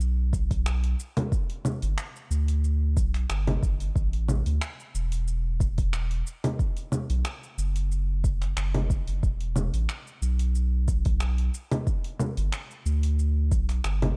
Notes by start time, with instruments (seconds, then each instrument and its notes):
Already playing: sub bass B1
0.01 shaker
0.33 kick, shaker
0.51 kick, open hi-hat, shaker
0.66 finger snap, shaker
0.84 open hi-hat
1.00 shaker
1.17 open hi-hat, low conga, shaker
1.32 kick, shaker
1.50 open hi-hat
1.65 low conga, shaker
1.82 sub bass G1, open hi-hat, shaker
1.98 finger snap, shaker
2.16 shaker
2.31 sub bass D2, shaker
2.48 open hi-hat, shaker
2.64 shaker
2.97 sub bass B1, kick, shaker
3.14 finger snap, open hi-hat, shaker
3.30 sub bass G1, finger snap, shaker
3.47 open hi-hat, low conga
3.63 sub bass G1, kick, shaker
3.80 open hi-hat, shaker
3.96 sub bass A1, kick, shaker
4.13 open hi-hat
4.28 low conga, shaker
4.46 sub bass D2, open hi-hat, shaker
4.61 finger snap, shaker
4.80 shaker
4.95 sub bass E1, shaker
5.12 open hi-hat, shaker
5.28 shaker
5.60 kick, shaker
5.78 kick, open hi-hat, shaker
5.93 finger snap, shaker
6.11 open hi-hat
6.27 shaker
6.44 open hi-hat, low conga, shaker
6.59 kick, shaker
6.77 open hi-hat, shaker
6.92 low conga, shaker
7.10 sub bass B1, open hi-hat, shaker
7.25 finger snap, shaker
7.43 shaker
7.58 sub bass F#1, shaker
7.76 open hi-hat, shaker
7.92 shaker
8.24 kick, shaker
8.42 finger snap, open hi-hat, shaker
8.57 sub bass F#1, finger snap, shaker
8.74 open hi-hat, low conga
8.90 kick, shaker
9.08 sub bass F#1, open hi-hat, shaker
9.23 sub bass E1, kick, shaker
9.41 open hi-hat
9.56 low conga, shaker
9.74 sub bass A1, open hi-hat, shaker
9.89 finger snap, shaker
10.07 shaker
10.22 sub bass B1, shaker
10.39 open hi-hat, shaker
10.55 shaker
10.88 kick, shaker
11.05 kick, open hi-hat, shaker
11.20 finger snap, shaker
11.38 open hi-hat
11.54 shaker
11.71 open hi-hat, low conga, shaker
11.87 kick, shaker
12.04 open hi-hat
12.19 low conga, shaker
12.37 sub bass G1, open hi-hat, shaker
12.52 finger snap, shaker
12.71 shaker
12.86 sub bass D2, shaker
13.03 open hi-hat, shaker
13.19 shaker
13.52 sub bass B1, kick, shaker
13.69 finger snap, open hi-hat, shaker
13.84 sub bass G1, finger snap, shaker
14.02 open hi-hat, low conga